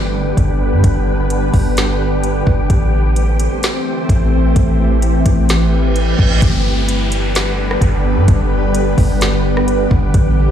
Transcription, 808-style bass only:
0.00 0.33 G1 loud
0.37 0.74 G1 loud
0.72 0.83 G2 loud
0.84 1.51 G1 loud
1.54 2.43 G1 medium
2.47 2.69 G1 loud
2.70 3.48 A1 loud
4.09 4.54 A1 loud
4.56 5.23 A1 loud
5.26 6.15 A1 loud
6.19 6.41 A1 loud
6.42 7.78 G1 loud
7.81 8.18 G1 loud
8.17 8.28 G2 loud
8.28 8.95 G1 loud
8.98 9.87 G1 loud
9.91 10.13 G1 loud
10.14 10.51 A1 loud

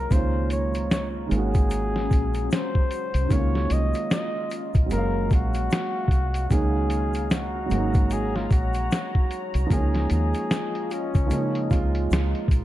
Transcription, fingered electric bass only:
0.11 1.27 C#2 medium
1.31 2.07 G#1 loud
2.11 2.48 A#1 medium
3.14 3.30 C2 medium
3.31 3.68 C#2 loud
3.71 3.92 C2 medium
4.75 4.90 A#1 medium
4.92 5.28 F#1 loud
5.31 5.68 A#1 medium
6.08 6.46 C2 medium
6.51 7.73 C#2 loud
7.71 8.47 G#1 loud
8.51 8.88 A#1 medium
9.55 9.70 C2 medium
9.71 10.08 C#2 loud
10.11 10.33 D#2 medium
11.15 11.30 C#2 medium
11.32 11.68 C#3 loud
11.71 12.08 C#2 medium
12.11 12.33 C#2 medium
12.48 12.64 A#1 medium

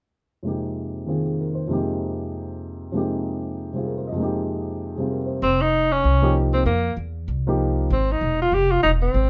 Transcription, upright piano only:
0.43 1.66 F2 soft
0.43 1.68 C3 soft
0.43 1.68 G#3 soft
0.43 1.06 A#3 soft
0.47 1.70 D#4 soft
0.47 1.71 G4 soft
1.06 1.69 D#3 soft
1.06 1.69 A#3 soft
1.06 1.70 C4 soft
1.06 1.70 F4 soft
1.06 1.22 G#4 soft
1.23 1.45 G#4 soft
1.40 1.62 A#4 soft
1.55 1.76 C5 soft
1.68 2.90 F2 soft
1.68 2.92 C3 soft
1.68 2.93 G#3 soft
1.68 2.94 A#3 soft
1.72 2.95 D#4 soft
1.72 2.95 G4 medium
2.92 4.11 F2 soft
2.92 3.72 C3 soft
2.92 4.15 G#3 soft
2.92 4.17 A#3 soft
2.96 4.19 D#4 soft
2.96 4.20 G4 soft
3.73 4.13 C3 soft
3.73 4.18 G3 soft
3.73 4.18 C4 soft
3.73 4.19 F4 soft
3.73 3.92 G#4 soft
3.86 4.04 A#4 soft
3.98 4.13 C5 soft
4.07 4.23 D#5 soft
4.12 5.39 F2 soft
4.12 4.96 C3 soft
4.16 5.41 G#3 soft
4.16 5.42 A#3 soft
4.21 5.44 D#4 soft
4.21 5.45 G4 medium
4.95 5.41 C3 soft
4.95 5.42 G3 soft
4.95 5.17 G#4 soft
5.00 5.42 C4 soft
5.00 5.43 F4 soft
5.11 5.34 A#4 soft
5.27 5.48 C5 soft
6.22 6.63 F3 medium
6.22 6.63 A#3 soft
6.22 6.64 D#4 medium
6.22 6.64 G4 medium
7.47 7.88 F3 medium
7.47 7.88 A#3 medium
7.47 7.88 D#4 medium
7.47 7.89 G4 medium

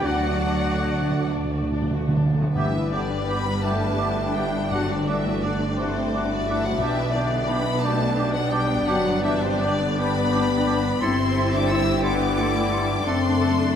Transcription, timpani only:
0.03 0.11 D3 soft
0.13 0.20 D3 soft
0.22 0.30 D3 soft
0.31 0.38 D3 soft
0.48 0.55 D3 soft
0.56 0.65 D3 soft
0.66 0.74 D3 soft
0.75 0.83 D3 soft
0.84 0.91 D3 soft
0.93 1.00 D3 soft
1.02 1.09 D3 soft
1.10 1.17 D3 medium
1.18 1.25 D3 medium
1.27 1.35 D3 medium
1.37 1.44 D3 soft
1.45 1.53 D3 medium
1.54 1.61 D3 medium
1.63 1.70 D3 medium
1.72 1.80 D3 medium
1.82 1.90 D3 medium
1.91 1.98 D3 medium
1.99 2.07 D3 medium
2.08 2.16 D3 medium
2.17 2.25 D3 medium
2.26 2.32 D3 medium
2.33 2.41 D3 medium
2.42 2.50 D3 medium
2.56 3.60 G2 medium
4.71 5.74 G2 medium

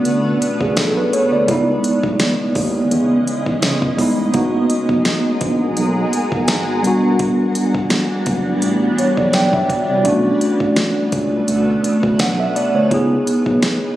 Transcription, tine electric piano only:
0.00 1.51 A3 medium
0.00 1.50 C#4 medium
0.00 1.50 D4 medium
0.00 1.50 F#4 loud
0.00 1.32 D5 medium
0.61 0.76 G#4 medium
0.78 0.96 A4 medium
0.97 1.12 B4 medium
1.13 1.31 C#5 medium
1.32 1.66 D5 medium
1.46 2.82 G#3 loud
1.46 2.83 B3 medium
1.46 2.84 D#4 medium
1.51 2.85 E4 loud
3.97 4.31 G#3 medium
3.97 4.32 B3 medium
3.97 4.33 D#4 medium
4.01 4.34 E4 medium
4.33 5.68 A#3 medium
4.33 5.69 B3 medium
4.33 5.70 D#4 medium
4.37 5.71 F#4 loud
6.82 8.18 G3 medium
6.82 8.19 B3 medium
6.82 8.20 D4 medium
6.87 8.21 F#4 loud
8.99 9.17 C#5 medium
9.18 9.34 D5 medium
9.35 9.53 G5 medium
9.54 9.88 E5 medium
9.90 10.23 D5 medium
10.04 11.40 A3 loud
10.04 11.40 C#4 medium
10.04 11.41 D4 medium
10.08 11.42 F#4 loud
12.20 12.38 F#5 medium
12.40 12.55 E5 medium
12.56 12.74 D5 medium
12.75 13.09 C#5 medium
12.89 13.96 B3 medium
12.89 13.96 D#4 medium
12.89 13.96 E4 medium
12.94 13.96 G#4 loud

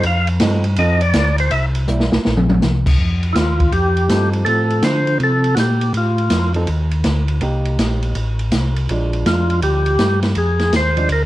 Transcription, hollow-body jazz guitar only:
0.42 0.63 F3 medium
0.42 0.63 C4 medium
0.42 0.64 D#4 medium
0.42 0.64 A4 medium
0.78 1.00 F3 medium
0.78 1.00 C4 medium
0.78 1.00 D#4 medium
0.78 1.00 A4 medium
1.88 2.10 G3 medium
1.88 2.11 A#3 medium
1.88 2.11 E4 medium
4.09 4.46 F3 soft
4.09 4.46 C4 medium
4.09 4.66 D#4 medium
4.09 4.47 A4 medium
4.47 5.50 F3 medium
4.47 5.50 C4 medium
4.47 5.50 A4 medium
6.55 6.66 F3 soft
6.55 6.67 C4 medium
6.55 6.67 D#4 medium
6.55 6.67 A4 medium
7.42 8.15 A#3 medium
7.42 8.16 D#4 medium
7.42 8.16 G4 medium
8.91 9.93 F3 soft
8.91 9.93 G#3 soft
8.91 9.93 D4 soft
10.97 11.08 F3 soft
10.97 11.09 G#3 medium
10.97 11.09 D4 medium

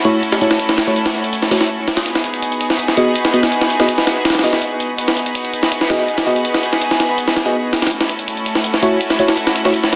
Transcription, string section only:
0.00 2.04 A3 medium
0.00 2.04 C#4 medium
0.00 2.04 E4 medium
0.00 2.03 F#4 medium
0.00 2.04 A4 medium
2.06 4.96 B3 medium
2.06 4.96 D#4 medium
2.06 4.96 F#4 medium
2.06 4.96 G#4 medium
2.06 4.96 B4 medium
4.99 7.89 B3 medium
4.99 7.89 D#4 medium
4.99 7.89 F#4 medium
4.99 7.89 G#4 medium
4.99 7.89 B4 medium
7.91 9.96 A3 medium
7.91 9.96 C#4 medium
7.91 9.96 E4 medium
7.91 9.96 F#4 medium
7.91 9.96 A4 medium

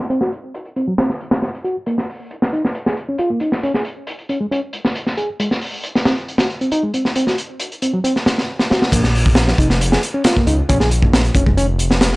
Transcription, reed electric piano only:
0.10 0.18 C4 medium
0.21 0.29 F#4 medium
0.76 0.85 C4 medium
0.87 0.92 F#3 medium
0.98 1.06 C4 medium
1.65 1.75 F#4 medium
1.87 1.95 A#3 medium
2.53 2.61 D#4 medium
2.86 2.94 G#4 medium
3.09 3.16 C#4 medium
3.19 3.29 F4 medium
3.30 3.38 A#3 medium
3.41 3.49 D#4 medium
3.63 3.71 C#4 medium
3.74 3.82 G#4 medium
4.29 4.38 C#4 medium
4.41 4.45 G#3 medium
4.51 4.60 C#4 medium
5.17 5.28 G#4 medium
5.39 5.48 G#3 medium
6.06 6.14 C4 medium
6.39 6.47 F#4 medium
6.61 6.69 C4 medium
6.72 6.82 D#4 loud
6.83 6.91 G#3 medium
6.94 7.02 C4 medium
7.16 7.24 C4 medium
7.27 7.35 F#4 medium
7.82 7.90 C4 medium
7.93 7.98 F#3 medium
8.04 8.12 C4 loud
8.70 8.81 F#4 medium
8.92 9.01 A#3 medium
9.59 9.67 D#4 medium
9.92 10.00 G#4 medium
10.14 10.22 C#4 medium
10.25 10.35 F4 loud
10.36 10.44 A#3 medium
10.47 10.55 D#4 medium
10.69 10.77 C#4 loud
10.80 10.88 G#4 medium
11.35 11.43 C#4 medium
11.46 11.51 G#3 medium
11.57 11.66 C#4 loud

